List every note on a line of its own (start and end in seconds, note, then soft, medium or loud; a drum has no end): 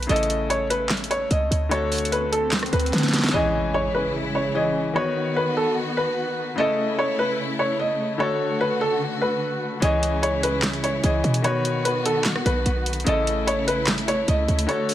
0.00 0.11 D#3 medium
0.00 0.11 B3 medium
0.00 0.11 F#4 medium
0.00 0.11 B4 medium
0.00 closed hi-hat medium
0.07 1.27 A1 loud
0.07 1.67 C#3 medium
0.07 1.68 A3 medium
0.07 1.69 E4 medium
0.07 0.47 D#5 loud
0.07 closed hi-hat medium
0.07 swell medium
0.11 1.69 A4 medium
0.16 closed hi-hat medium
0.23 closed hi-hat medium
0.30 closed hi-hat medium
0.50 0.67 C#5 medium
0.50 closed hi-hat medium
0.70 0.87 B4 medium
0.70 closed hi-hat medium
0.89 snare loud
0.89 clap medium
0.89 closed hi-hat soft
0.97 closed hi-hat medium
1.04 closed hi-hat medium
1.11 1.27 C#5 medium
1.11 closed hi-hat medium
1.31 1.50 C#2 loud
1.31 1.69 D#5 medium
1.31 closed hi-hat medium
1.51 2.69 D2 loud
1.51 closed hi-hat medium
1.69 3.29 D3 medium
1.69 3.30 A3 medium
1.69 3.31 F#4 medium
1.69 2.09 C#5 loud
1.69 closed hi-hat medium
1.73 3.31 A4 medium
1.92 closed hi-hat medium
1.92 open hi-hat medium
1.98 closed hi-hat medium
2.05 closed hi-hat medium
2.12 2.29 B4 medium
2.12 closed hi-hat medium
2.32 2.49 A4 medium
2.32 closed hi-hat medium
2.52 snare loud
2.52 clap medium
2.52 closed hi-hat medium
2.59 cross-stick loud
2.59 closed hi-hat medium
2.66 closed hi-hat medium
2.73 2.92 D2 loud
2.73 3.30 B4 medium
2.73 closed hi-hat medium
2.80 closed hi-hat medium
2.86 closed hi-hat medium
2.93 3.32 D3 loud
2.93 snare medium
2.93 closed hi-hat medium
2.98 snare medium
2.98 closed hi-hat medium
3.03 snare medium
3.03 closed hi-hat medium
3.08 snare medium
3.08 closed hi-hat soft
3.13 snare medium
3.13 closed hi-hat medium
3.19 snare medium
3.23 snare loud
3.29 4.52 E3 medium
3.29 snare medium
3.33 4.94 C#3 medium
3.33 4.94 G#3 medium
3.33 4.52 C#4 medium
3.33 4.94 E4 medium
3.33 4.53 G#4 medium
3.33 4.54 C#5 medium
3.33 3.72 D#5 loud
3.33 impact medium
3.74 3.91 C#5 medium
3.94 4.11 B4 medium
4.35 4.52 C#5 medium
4.54 4.95 E3 medium
4.54 4.96 C#4 medium
4.54 4.96 G#4 soft
4.54 4.96 C#5 medium
4.54 4.93 D#5 medium
4.93 6.53 D#3 medium
4.93 6.56 D#3 medium
4.93 6.54 B3 medium
4.93 6.56 B3 medium
4.93 6.56 F#4 medium
4.93 6.55 F#4 medium
4.93 5.34 C#5 loud
4.98 6.56 B4 medium
5.36 5.53 B4 medium
5.57 5.73 A4 medium
5.97 6.54 B4 medium
6.56 8.16 C#3 medium
6.56 8.18 C#3 medium
6.56 8.16 A3 medium
6.56 9.79 A3 medium
6.56 8.18 E4 medium
6.56 8.17 E4 medium
6.56 6.96 D#5 loud
6.60 8.18 A4 medium
6.98 7.15 C#5 medium
7.19 7.35 B4 medium
7.59 7.76 C#5 medium
7.80 8.18 D#5 medium
8.18 9.78 D3 medium
8.18 9.81 D3 medium
8.18 9.79 A3 medium
8.18 9.81 F#4 medium
8.18 9.79 F#4 medium
8.18 8.58 C#5 loud
8.22 9.80 A4 medium
8.61 8.77 B4 medium
8.81 8.98 A4 medium
9.21 9.79 B4 medium
9.80 11.00 C#2 loud
9.80 11.43 C#3 medium
9.80 11.00 E3 medium
9.80 11.43 G#3 medium
9.80 11.01 C#4 medium
9.80 11.43 E4 medium
9.80 11.02 G#4 medium
9.80 10.20 D#5 loud
9.80 closed hi-hat medium
9.84 11.02 C#5 medium
10.03 closed hi-hat medium
10.23 10.39 C#5 medium
10.23 closed hi-hat medium
10.43 10.60 B4 medium
10.43 closed hi-hat medium
10.62 snare loud
10.62 clap loud
10.62 closed hi-hat medium
10.73 closed hi-hat medium
10.84 11.00 C#5 medium
10.84 closed hi-hat medium
11.03 11.23 C#2 loud
11.03 11.44 E3 medium
11.03 11.44 C#4 soft
11.03 11.45 G#4 soft
11.03 11.45 C#5 medium
11.03 11.42 D#5 medium
11.03 closed hi-hat medium
11.24 12.42 B2 loud
11.24 closed hi-hat medium
11.34 closed hi-hat medium
11.42 13.02 D#3 medium
11.42 13.05 D#3 medium
11.42 13.03 B3 medium
11.42 13.05 B3 medium
11.42 13.05 F#4 medium
11.42 13.04 F#4 medium
11.42 11.83 C#5 loud
11.42 closed hi-hat medium
11.47 13.04 B4 medium
11.65 closed hi-hat medium
11.85 12.02 B4 medium
11.85 closed hi-hat medium
12.05 12.22 A4 medium
12.05 closed hi-hat medium
12.25 snare loud
12.25 clap loud
12.25 closed hi-hat medium
12.36 cross-stick loud
12.46 12.65 B1 loud
12.46 13.03 B4 medium
12.46 closed hi-hat medium
12.66 13.05 B1 loud
12.66 closed hi-hat medium
12.86 closed hi-hat medium
12.93 closed hi-hat medium
13.00 closed hi-hat soft
13.04 14.24 A1 loud
13.04 14.64 C#3 medium
13.04 14.67 C#3 medium
13.04 14.65 A3 medium
13.04 14.94 A3 medium
13.04 14.67 E4 medium
13.04 14.66 E4 medium
13.04 13.45 D#5 loud
13.04 closed hi-hat medium
13.09 14.67 A4 medium
13.27 closed hi-hat medium
13.47 13.64 C#5 medium
13.47 closed hi-hat medium
13.67 13.84 B4 medium
13.67 closed hi-hat medium
13.87 snare loud
13.87 clap loud
13.87 closed hi-hat medium
13.98 closed hi-hat medium
14.08 14.25 C#5 medium
14.08 closed hi-hat medium
14.28 14.48 C#2 loud
14.28 14.66 D#5 medium
14.28 closed hi-hat medium
14.48 14.68 D2 loud
14.48 closed hi-hat medium
14.59 closed hi-hat medium
14.66 14.94 D3 medium
14.66 14.94 A3 medium
14.66 14.94 F#4 medium
14.66 14.94 C#5 loud
14.66 closed hi-hat medium
14.71 14.94 A4 medium
14.89 closed hi-hat medium
14.89 open hi-hat medium